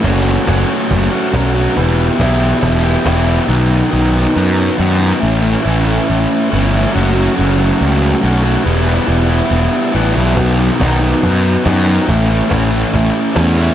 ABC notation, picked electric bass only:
X:1
M:4/4
L:1/8
Q:1/4=139
K:Bmix
V:1 name="Picked electric bass" clef=bass
F,,,2 F,,, z F,,, z B,,,2 | E,,,2 B,,,2 E,,,2 E,,,2 | B,,,2 B,,,2 F,,2 F,,2 | A,,,2 A,,,2 A,,, z =G,,,2 |
F,,,2 F,,,2 C,,2 B,,,2 | E,,,2 E,,,2 E,,, z A,,, B,,, | B,,,2 B,,,2 F,,2 F,,2 | A,,,2 A,,,2 A,,, z E,,2 |]